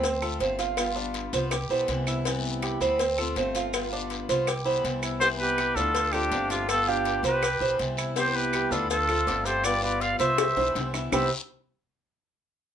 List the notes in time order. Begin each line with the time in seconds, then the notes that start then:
Already playing: D2 C4
0.04 muted steel-string acoustic guitar stroke, cowbell, long guiro, maracas
0.22 A3 C4 F4 A4, claves, maracas
0.40 G1 D3 A3 C4 F4 C5, cowbell, short guiro, maracas
0.59 F4, cowbell, short guiro, maracas
0.77 G3 B3 F4, cowbell, long guiro, claves, maracas
0.96 D4, maracas
1.14 cowbell, short guiro, maracas
1.33 C2 B3 F4 C5, cowbell, short guiro, maracas
1.51 G4, muted steel-string acoustic guitar stroke, cowbell, long guiro, claves, maracas
1.69 B1 E3 G3 B3 E4 C5, maracas
1.88 C2 E3 G3 B3 E4, cowbell, short guiro, maracas
2.07 E4, short guiro, claves, maracas
2.25 C3 E3 G3 B3 E4, cowbell, long guiro, maracas
2.45 maracas
2.62 G4, cowbell, short guiro, claves, maracas
2.80 D2 E3 G3 B3 C4 E4, short guiro, maracas
2.99 muted steel-string acoustic guitar stroke, cowbell, long guiro, maracas
3.18 A3 C4 F4 A4, claves, maracas
3.36 G1 D3 A3 C4 F4 C5, cowbell, short guiro, maracas
3.55 F4, cowbell, short guiro, maracas
3.73 G3 B3 F4, cowbell, long guiro, claves, maracas
3.93 D4, maracas
4.10 cowbell, short guiro, maracas
4.29 C2 B3 F4 C5, cowbell, short guiro, maracas
4.47 G4, muted steel-string acoustic guitar stroke, cowbell, long guiro, claves, maracas
4.65 E3 G3 B3 E4 C5, maracas
4.84 C2 E3 G3 B3 E4, cowbell, short guiro, maracas
5.03 E4, short guiro, claves, maracas
5.20 C3 E3 G3 B3 E4 G4 C5, cowbell, long guiro, maracas
5.39 G4 B4, maracas
5.58 G4, cowbell, short guiro, claves, maracas
5.75 D2 E3 G3 B3 D4 E4 F4 A4, short guiro, maracas
5.95 muted steel-string acoustic guitar stroke, cowbell, long guiro, maracas
6.12 A3 C4 D4 F4 G4 A4, claves, maracas
6.31 G1 D3 A3 C4 F4 D5, cowbell, short guiro, maracas
6.50 D4 F4 G4, cowbell, short guiro, maracas
6.68 G3 B3 F4 A4, cowbell, long guiro, claves, maracas
6.88 D4 F4 G4, maracas
7.05 cowbell, short guiro, maracas
7.23 C2 B3 F4 G4 B4 C5, cowbell, short guiro, maracas
7.42 G4, muted steel-string acoustic guitar stroke, cowbell, long guiro, claves, maracas
7.60 B1 E3 G3 B3 E4 C5, maracas
7.79 C2 E3 G3 B3 E4, cowbell, short guiro, maracas
7.97 E4, short guiro, claves, maracas
8.16 C3 E3 G3 B3 E4 G4 C5, cowbell, long guiro, maracas
8.34 G4 B4, maracas
8.53 G4, cowbell, short guiro, claves, maracas
8.71 D2 E3 G3 B3 D4 E4 F4 A4, short guiro, maracas
8.90 F4 A4, muted steel-string acoustic guitar stroke, cowbell, long guiro, maracas
9.09 A3 C4 F4 A4, claves, maracas
9.27 G1 D3 A3 C4 F4 D5, cowbell, short guiro, maracas
9.45 G4 A4 C5, cowbell, short guiro, maracas
9.64 G3 B3 F4 B4 D5, cowbell, long guiro, claves, maracas
9.82 F4 B4 D5, maracas
10.01 D5 F5, cowbell, short guiro, maracas
10.18 C2 B3 F4 C5 E5, cowbell, short guiro, maracas
10.38 G4, muted steel-string acoustic guitar stroke, cowbell, high bongo, long guiro, claves, maracas
10.57 B1 E3 G3 B3 E4 C5, low bongo, maracas
10.75 C2 E3 G3 B3 E4, cowbell, low bongo, short guiro, maracas
10.94 E4, low bongo, short guiro, claves, maracas
11.12 C2 C3 E3 G3 B3 C4 E4 G4 B4 C5 E5, low bongo, long guiro, claves, maracas